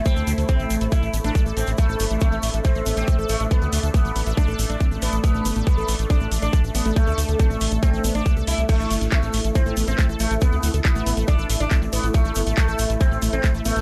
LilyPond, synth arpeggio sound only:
\new Staff \with { instrumentName = "Synth arpeggio sound" } { \time 4/4 \key a \minor \tempo 4 = 139 a16 a'16 a16 a16 c'16 a16 a16 a'16 a16 a16 b16 a16 a16 a'16 a16 a16 | a16 a'16 a16 a16 c'16 a16 a16 a'16 a16 a16 b16 a16 a16 a'16 a16 a16 | c'16 a16 a16 a'16 a16 a16 b16 a16 a16 a'16 a16 a16 c'16 a16 a16 a'16 | a16 a16 b16 a16 a16 a'16 a16 a16 c'16 a16 a16 a'16 a16 a16 b16 a16 |
a16 a'16 a16 a16 c'16 a16 a16 a'16 a16 a16 b16 a16 a16 a'16 a16 a16 | a16 a'16 a16 a16 c'16 a16 a16 a'16 a16 a16 b16 a16 a16 a'16 a16 a16 | c'16 a16 a16 a'16 a16 a16 b16 a16 a16 a'16 a16 a16 c'16 a16 a16 a'16 | a16 a16 b16 a16 a16 a'16 a16 a16 c'16 a16 a16 a'16 a16 a16 b16 a16 | }